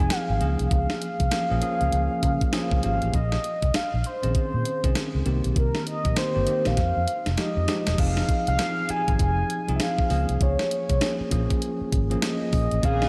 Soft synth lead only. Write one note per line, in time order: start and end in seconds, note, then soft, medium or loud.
0.00 0.13 G#5 loud
0.12 0.72 F5 loud
0.73 2.80 F5 loud
2.85 3.17 F5 loud
3.15 3.77 D#5 loud
3.76 4.08 F5 loud
4.06 4.36 C5 medium
4.37 5.23 C5 medium
5.57 5.85 A#4 medium
5.87 6.19 D#5 loud
6.18 6.69 C5 loud
6.67 7.39 F5 loud
7.39 8.01 D#5 medium
7.99 8.48 F5 loud
8.48 8.92 F5 loud
8.90 9.20 G#5 loud
9.21 9.72 G#5 loud
9.76 9.83 E5 medium
9.82 10.44 F5 loud
10.42 11.63 C#5 loud
12.24 12.86 D#5 medium
12.85 13.09 F5 loud